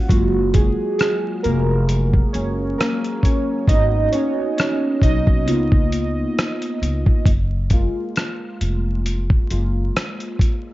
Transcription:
0.09 F#1 F#3 G#3 A#3 F4 F#4, kick, closed hi-hat
0.53 G#3 G#4, kick, closed hi-hat
0.99 G#3 G#4, cross-stick, closed hi-hat
1.43 F1 A#3 A#4, closed hi-hat
1.89 closed hi-hat
2.14 kick
2.33 F#1 C#4 C#5, closed hi-hat
2.78 A#3 A#4, cross-stick, closed hi-hat
3.04 closed hi-hat
3.23 C#4 C#5, kick, closed hi-hat
3.68 G#1 A#3 B3 C#4 D#4 F#4 D#5, kick, closed hi-hat
4.12 C#4 C#5, closed hi-hat
4.57 C#4 C#5, cross-stick, closed hi-hat
5.02 B1 D#4 D#5, kick, closed hi-hat
5.27 kick
5.47 C#2 A#3 B3 D#4 F4, closed hi-hat
5.72 kick
5.92 closed hi-hat
6.38 cross-stick, closed hi-hat
6.62 closed hi-hat
6.82 C#2, closed hi-hat
7.06 kick
7.26 F#1, kick, closed hi-hat
7.70 G#3 A#3 F4, kick, closed hi-hat
8.16 cross-stick, closed hi-hat
8.61 F1, closed hi-hat
9.06 closed hi-hat
9.30 kick
9.50 F#1 G#3 A#3 F4, closed hi-hat
9.96 cross-stick, closed hi-hat
10.20 closed hi-hat
10.39 kick, closed hi-hat

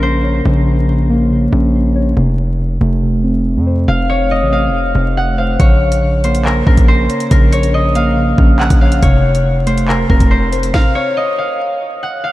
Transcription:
Already playing: A#1 C#3 A#3 C#4 A#4 F5
0.03 C5
0.24 C#5
0.45 A#1 C#3
0.88 C#3
1.10 A#3
1.31 C#3
1.53 A#1 C#4
1.95 C#5
2.17 F1 C3
2.59 C3
2.81 F1 A3
3.03 C3
3.23 C4
3.56 F2
3.66 C5
3.88 F1 C3 F5
4.09 C#5
4.31 C3 D#5
4.42 A1
4.52 A3 F5
4.68 F1
4.74 C3
4.94 F1 C4
5.17 F#5
5.38 C5 F5
5.59 A#1 C#3 C#5, kick, closed hi-hat
5.92 closed hi-hat
6.02 C#3
6.24 A#3 C5, closed hi-hat
6.35 closed hi-hat
6.45 C#3 A#4, clap
6.66 A#1 C#4 A#4, kick
6.77 A#1, kick, closed hi-hat
6.88 C5
7.09 C#5, closed hi-hat
7.20 closed hi-hat
7.31 A#1 C#3 A#4, kick, closed hi-hat
7.52 C#5, closed hi-hat
7.63 closed hi-hat
7.74 C#3 D#5
7.95 A#3 F5, closed hi-hat
8.16 C#3
8.38 A#1 C#4, kick
8.59 F#5, clap
8.70 A#1, kick, closed hi-hat
8.81 C#5 F5
8.92 closed hi-hat
9.03 F1 C3 C#5, kick, closed hi-hat
9.35 closed hi-hat
9.45 C3
9.66 A3 C5, closed hi-hat
9.78 closed hi-hat
9.88 C3 A#4, clap
10.09 F1 C4 A#4, kick
10.20 F1, kick, closed hi-hat
10.31 C5
10.52 C5, closed hi-hat
10.63 closed hi-hat
10.74 F5, kick, snare
10.95 C#5
11.17 D#5
11.38 F5
12.03 F#5
12.24 F5

